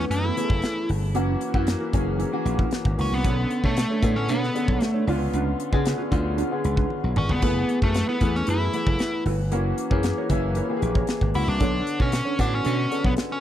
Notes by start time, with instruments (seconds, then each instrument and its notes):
Already playing: grand piano E3 A3 B3 C#4 G#4
0.00 muted clean electric guitar stroke
0.10 slap bass F#2, lead electric guitar E4, muted clean electric guitar stroke, closed hi-hat
0.24 clean electric guitar B3 E4 A4
0.37 grand piano E3 A3 B3 G#4, clean electric guitar B3 E4 A4, closed hi-hat
0.44 grand piano A4
0.50 slap bass F#1, muted clean electric guitar stroke, kick
0.62 muted clean electric guitar stroke, snare, closed hi-hat
0.76 muted clean electric guitar stroke
0.89 slap bass G1, open hi-hat
1.02 muted clean electric guitar stroke
1.15 slap bass F#1, grand piano E3 A#3 C#4 F#4, clean electric guitar C#4 E4 A#4, closed hi-hat
1.29 muted clean electric guitar stroke
1.41 muted clean electric guitar stroke, closed hi-hat
1.54 slap bass F#2, grand piano E3 A#3 C#4 F#4, clean electric guitar C#4 E4 A#4, kick
1.67 snare, closed hi-hat
1.81 clean electric guitar C#4 E4 A#4
1.93 slap bass F#1, grand piano E3 A#3 C#4 G#4, clean electric guitar C#4 E4 A#4, kick, closed hi-hat
2.07 muted clean electric guitar stroke
2.19 clean electric guitar C#4 E4 A#4, closed hi-hat
2.32 grand piano E3 A#3 C#4 F#4, muted clean electric guitar stroke
2.45 slap bass A#1, muted clean electric guitar stroke, closed hi-hat
2.59 clean electric guitar C#4 E4 A#4, kick
2.71 muted clean electric guitar stroke, snare, closed hi-hat
2.85 slap bass G#1, muted clean electric guitar stroke, kick
2.98 slap bass C#2, grand piano E3 A#3 C#4 F#4, lead electric guitar C#4, open hi-hat
3.11 slap bass C2, lead electric guitar B3, muted clean electric guitar stroke
3.24 slap bass B1, grand piano D3 B3 C#4 A4, clean electric guitar D4 A4 C#5, kick, closed hi-hat
3.38 muted clean electric guitar stroke
3.51 muted clean electric guitar stroke, closed hi-hat
3.64 slap bass B2, lead electric guitar A3, clean electric guitar D4 A4 C#5, kick
3.77 snare, closed hi-hat
3.90 clean electric guitar D4 A4 C#5
4.02 slap bass A2, grand piano D3 B3 C#4 A4, clean electric guitar D4 A4 C#5, kick, closed hi-hat
4.16 lead electric guitar C#4
4.29 slap bass B2, lead electric guitar B3, clean electric guitar D4 A4 C#5, closed hi-hat
4.43 muted clean electric guitar stroke, snare
4.55 grand piano D3 B3 C#4 A4, muted clean electric guitar stroke, closed hi-hat
4.68 slap bass B1, clean electric guitar D4 A4 C#5, kick
4.81 lead electric guitar A3, muted clean electric guitar stroke, snare, closed hi-hat
4.94 clean electric guitar D4 A4 C#5
5.07 slap bass C#2, grand piano D3 B3 C#4 F4, clean electric guitar D4 F4 B4, open hi-hat
5.20 muted clean electric guitar stroke
5.33 slap bass C#2, clean electric guitar D4 F4 B4, closed hi-hat
5.46 muted clean electric guitar stroke
5.59 muted clean electric guitar stroke, closed hi-hat
5.72 slap bass C#3, grand piano D3 B3 C#4 G#4, clean electric guitar D4 F4 B4, kick
5.85 muted clean electric guitar stroke, snare, closed hi-hat
5.98 clean electric guitar D4 F4 B4
6.11 slap bass D2, grand piano D3 B3 C#4 F4, clean electric guitar D4 F4 B4, kick, closed hi-hat
6.24 muted clean electric guitar stroke
6.37 clean electric guitar D4 F4 B4, closed hi-hat
6.51 grand piano D3 B3 C#4 G#4, muted clean electric guitar stroke
6.64 slap bass C#2, muted clean electric guitar stroke, closed hi-hat
6.76 clean electric guitar D4 F4 B4, kick
6.90 muted clean electric guitar stroke, high tom
7.03 slap bass B1, muted clean electric guitar stroke
7.16 slap bass G#1, grand piano D3 B3 C#4 G#4, lead electric guitar C#4, mid tom
7.29 slap bass G1, lead electric guitar B3, muted clean electric guitar stroke, floor tom
7.42 slap bass F#1, grand piano E3 A3 B3 G#4, clean electric guitar E4 A4 B4, kick, splash
7.56 muted clean electric guitar stroke
7.69 muted clean electric guitar stroke, closed hi-hat
7.82 slap bass F#2, lead electric guitar A3, clean electric guitar E4 A4 B4, kick
7.94 muted clean electric guitar stroke, snare, closed hi-hat
8.08 lead electric guitar B3, clean electric guitar E4 A4 B4
8.21 slap bass E2, grand piano E3 A3 B3 G#4, clean electric guitar E4 A4 B4, kick, closed hi-hat
8.34 lead electric guitar C#4, muted clean electric guitar stroke, snare
8.47 slap bass F#2, clean electric guitar E4 A4 B4, lead electric guitar E4, closed hi-hat
8.61 muted clean electric guitar stroke
8.73 grand piano E3 A3 B3 B4, muted clean electric guitar stroke, closed hi-hat
8.87 slap bass F#1, clean electric guitar E4 A4 B4, kick
8.99 snare, closed hi-hat
9.13 muted clean electric guitar stroke
9.25 slap bass G1, clean electric guitar E4 A4 B4, open hi-hat
9.41 muted clean electric guitar stroke
9.51 slap bass F#1, grand piano E3 A#3 C#4 F#4, clean electric guitar E4 A#4 C#5, closed hi-hat
9.65 muted clean electric guitar stroke
9.78 muted clean electric guitar stroke, closed hi-hat
9.90 slap bass F#2, grand piano E3 A#3 C#4 G#4, clean electric guitar E4 A#4 C#5, kick
10.03 muted clean electric guitar stroke, snare, closed hi-hat
10.18 clean electric guitar E4 A#4 C#5
10.29 slap bass F#1, grand piano E3 A#3 C#4 E4, clean electric guitar E4 A#4 C#5, kick, closed hi-hat
10.55 clean electric guitar E4 A#4 C#5, closed hi-hat
10.69 grand piano E3 A#3 C#4 G4, muted clean electric guitar stroke
10.77 grand piano G#4
10.82 slap bass A#1, muted clean electric guitar stroke, closed hi-hat
10.95 clean electric guitar E4 A#4 C#5, kick
11.07 snare, closed hi-hat
11.21 slap bass G#1, muted clean electric guitar stroke, kick
11.34 slap bass C#2, grand piano E3 A#3 C#4 F#4, lead electric guitar E4, open hi-hat
11.48 slap bass C2, lead electric guitar D4, muted clean electric guitar stroke
11.60 slap bass B1, grand piano D3 B3 A4 C#5, clean electric guitar D4 A4 C#5, kick, closed hi-hat
11.74 muted clean electric guitar stroke
11.87 muted clean electric guitar stroke, closed hi-hat
11.99 slap bass B2, lead electric guitar C#4, clean electric guitar D4 A4 C#5, kick
12.12 muted clean electric guitar stroke, snare, closed hi-hat
12.25 clean electric guitar D4 A4 C#5
12.38 slap bass A2, grand piano D3 B3 C#4 F#4, clean electric guitar D4 A4, lead electric guitar D4, kick, closed hi-hat
12.52 lead electric guitar C#4, muted clean electric guitar stroke
12.64 slap bass B2, clean electric guitar D4 A4 C#5, closed hi-hat
12.77 muted clean electric guitar stroke
12.90 grand piano D3 B3 C#4 A4, muted clean electric guitar stroke, closed hi-hat
13.04 slap bass B1, lead electric guitar B3, clean electric guitar D4 A4 C#5, kick
13.17 muted clean electric guitar stroke, snare, closed hi-hat
13.31 lead electric guitar C#4, muted clean electric guitar stroke